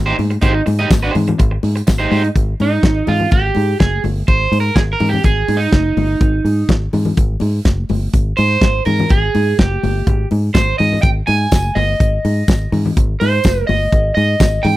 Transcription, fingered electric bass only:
Already playing: G#1
0.19 G#2
0.42 G#1
0.67 G#2
0.91 G#1
1.15 G#2
1.40 G#1
1.63 G#2
1.88 G#1
2.12 G#2
2.36 G#1
2.60 G#2
2.83 G#1
3.08 G#2
3.32 G#1
3.56 G#2
3.81 F#1
4.04 G1
4.28 G#1
4.52 G#2
4.76 G#1
5.00 G#2
5.25 G#1
5.48 G#2
5.73 F#1
5.97 G1
6.21 G#1
6.45 G#2
6.69 G#1
6.93 G#2
7.18 G#1
7.41 G#2
7.65 F#1
7.90 G1
8.14 G#1
8.39 G#2
8.62 G#1
8.86 G#2
9.11 G#1
9.35 G#2
9.59 F#1
9.84 G1
10.07 G#1
10.32 G#2
10.55 G#1
10.80 G#2
11.03 G#1
11.28 G#2
11.52 F#1
11.76 G1
12.00 G#1
12.25 G#2
12.48 G#1
12.72 G#2
12.97 G#1
13.22 G#2
13.45 F#1
13.69 G1
13.93 G#1
14.17 G#2
14.40 G#1
14.65 G#2

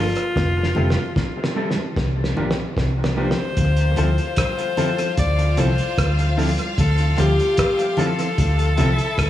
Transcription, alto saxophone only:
Already playing: F4
3.18 C5
4.39 C5
5.19 D5
5.59 C5
6.80 A4
7.20 G4
8.00 A4

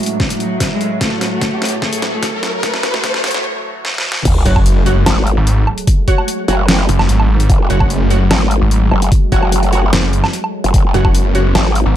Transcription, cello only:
0.40 F#3
0.71 G#3
1.01 A3
1.32 A3
1.82 A3
2.13 A3
2.63 A3
2.94 A3
3.03 A3
3.34 A3

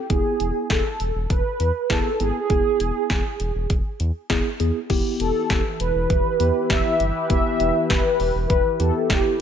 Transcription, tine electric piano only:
0.10 B3 E4 G#4
1.90 B3 E4 G#4
2.20 B3 E4 G#4
2.50 B3 E4 G#4
4.30 B3 E4 G#4
4.60 B3 E4 G#4
4.90 B3 E4 G4
6.40 B3 E4 G4
7.30 B3 E4 G4
8.80 B3 E4 G4

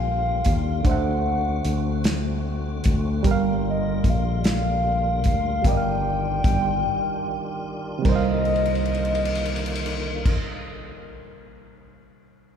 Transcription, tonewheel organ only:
Already playing: D3 G3 A#3 F4
0.85 A3 C4 F#4
3.24 G3 A#3 F4
5.65 D#3 D4 F4
8.05 D3 D#3 A#3 F4

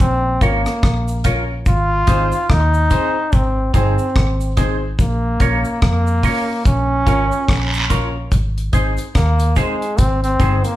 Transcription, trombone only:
0.01 C4
0.43 A#3
1.68 F4
2.51 D#4
3.35 C4
3.76 C4
5.01 A#3
5.83 A#3
6.67 C#4
9.16 A#3
9.57 G#3
9.99 C4
10.24 C4
10.65 A#3

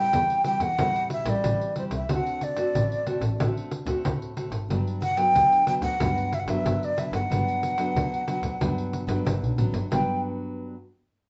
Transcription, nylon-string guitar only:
Already playing: A2 G3 C4 E4
0.14 E3
0.45 G3 C4 E4
0.79 A2 G3 C4 E4
1.26 G3 C4 E4
1.45 E3
1.76 G3 C4 E4
2.11 D3 A3 C4 F#4
2.57 A3 C4 F#4
2.75 A2
3.07 A3 C4 F#4
3.40 D3 A3 C4 F#4
3.87 A3 C4 F#4
4.06 A2
4.36 A3 C4 F#4
4.70 G2 F#3 B3 D4
5.17 F#3 B3 D4
5.35 D3
5.66 F#3 B3 D4
6.00 G2 F#3 B3 D4
6.47 F#3 B3 D4
6.65 D3
6.97 F#3 B3 D4
7.30 G2 F#3 B3 D4
7.77 F#3 B3 D4
7.96 D3
8.28 F#3 B3 D4
8.60 G2 F#3 B3 D4
9.07 F#3 B3 D4
9.26 D3
9.58 F#3 B3 D4
9.91 G2 F#3 B3 D4

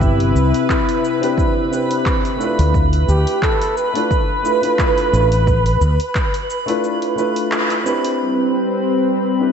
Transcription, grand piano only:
1.20 C4 D4 E4 G4 B4
1.70 C4 D4 E4 G4 B4
2.36 A3 D4 E4
2.42 F4 B4
3.93 A3 D4 E4 F4 B4
4.42 A3 D4 E4 F4 B4
4.61 A3 D4 E4 F4 B4
5.11 A3 D4 E4 F4 B4
6.66 A3 D4 E4 F4 B4
7.16 A3 D4 E4 F4 B4
7.84 C4 D4 E4 G4 B4
9.39 C4 D4 E4 G4 B4

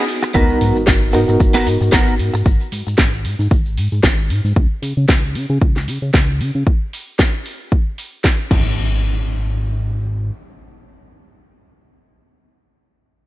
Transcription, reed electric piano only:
Already playing: B3 D#4 F#4 G#4
0.34 B3 D#4 F#4 A#4
1.13 B3 D#4 F#4 A#4

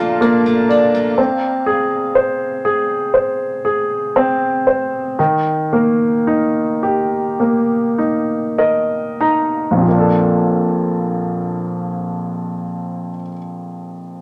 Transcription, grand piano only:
Already playing: F3 F4 D5
0.21 A#3
0.69 D5
1.18 C4
1.66 G#4
2.15 C5
2.65 G#4
3.14 C5
3.65 G#4
4.16 C4
4.67 C5
5.19 D#3
5.73 A#3
6.27 D#4
6.83 G4
7.40 A#3
7.98 D#4
8.58 A#4 D#5
9.21 D#4 A#5
9.71 A#1
9.77 F2
9.82 F3
9.88 A#3
9.94 D4
9.99 A4

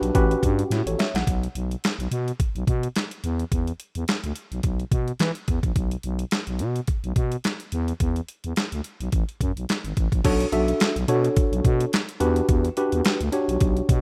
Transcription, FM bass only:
0.02 B1
0.15 A1
0.43 G2
0.71 A2
0.86 A1
1.14 A#1
1.27 B1
1.55 B1
1.99 B1
2.11 B2
2.55 B1
2.67 B2
3.24 E2
3.52 E2
3.96 E2
4.24 D2
4.52 B1
4.64 B1
4.91 B2
5.20 E3
5.48 E2
5.63 A#1
5.76 B1
6.04 B1
6.47 B1
6.60 B2
7.04 B1
7.16 B2
7.73 E2
8.00 E2
8.45 E2
8.72 D2
9.00 B1
9.13 A1
9.41 F#2
9.57 B1
9.84 G#1
9.97 A1
10.12 A#1
10.25 B1
10.52 B1
10.96 B1
11.08 B2
11.52 B1
11.65 B2
12.21 E2
12.49 E2
12.93 E2
13.21 D2
13.48 B1
13.61 B1
13.89 B2

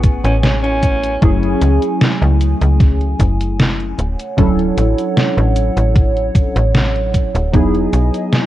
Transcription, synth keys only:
Already playing: A3 B3 C#4 E4 G#4
1.21 F#3 A3 C#4 E4 G#4
4.36 F#3 C#4 D4 E4 A4
7.52 F#3 B3 D#4 E4 G#4

